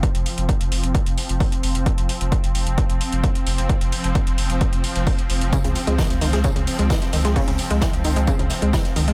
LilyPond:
<<
  \new Staff \with { instrumentName = "Synth drone" } { \clef bass \time 4/4 \key des \lydian \tempo 4 = 131 <f c'>1~ | <f c'>1~ | <f c'>1~ | <f c'>1~ |
<f c'>1 | }
  \new Staff \with { instrumentName = "Synth arpeggio sound" } { \clef bass \time 4/4 \key des \lydian r1 | r1 | r1 | des16 des16 r16 aes16 fes16 r16 ees16 aes16 des16 des16 r16 aes16 fes16 r16 ees16 aes16 |
des16 des16 r16 aes16 fes16 r16 ees16 aes16 des16 des16 r16 aes16 fes16 r16 ees16 aes16 | }
  \new Staff \with { instrumentName = "Sub bass" } { \clef bass \time 4/4 \key des \lydian r16 f,,16 r16 f,,16 r16 f,,16 f,,16 f,,16 r16 f,,16 r16 f,,16 r8 f,,16 f,,16 | r16 f,,16 r16 f,,16 r16 f,,16 f,,16 f,,16 r16 f,,16 r16 f,,16 r8 f,,16 f,,16 | r16 f,,16 r16 f,,16 r16 f,,16 f,,16 f,,16 r16 f,,16 r16 f,,16 r8 f,,16 f,,16 | r16 des,16 r16 des,16 r16 des,16 des,16 des,16 r16 des,16 r16 des,16 r8 des,16 des,16 |
r16 des,16 r16 des,16 r16 des,16 des,16 des,16 r16 des,16 r16 des,16 r8 des,16 des,16 | }
  \new DrumStaff \with { instrumentName = "Drums" } \drummode { \time 4/4 <hh bd>16 hh16 hho16 hh16 <hh bd>16 hh16 hho16 hh16 <hh bd>16 hh16 hho16 hh16 <hho bd>16 hh16 hho16 hh16 | <hh bd>16 hh16 hho16 hh16 <hh bd>16 hh16 hho16 hh16 <hh bd>16 hh16 hho16 hh16 <hh bd>16 hh16 hho16 hh16 | <hh bd>16 hh16 hho16 hh16 <hh bd>16 hh16 hho16 hh16 <hh bd>16 hh16 hho16 hh16 <hho bd>16 hh16 hho16 hh16 | <hh bd tamb>16 hh16 <hho tamb>16 hh16 <hh bd sn tamb>16 hh16 <hho sn tamb>16 <hh sn>16 <hh bd tamb>16 hh16 <hho tamb>16 hh16 <hh bd sn tamb>16 <hh sn>16 <hho tamb>16 <hh sn>16 |
<hh hho bd>16 hh16 <hho tamb>16 hh16 <hh bd sn tamb>16 hh16 <hho tamb>16 hh16 <hh bd tamb>16 hh16 <hho sn tamb>16 hh16 <hho bd sn tamb>16 <hh sn>16 <hho tamb>16 hh16 | }
>>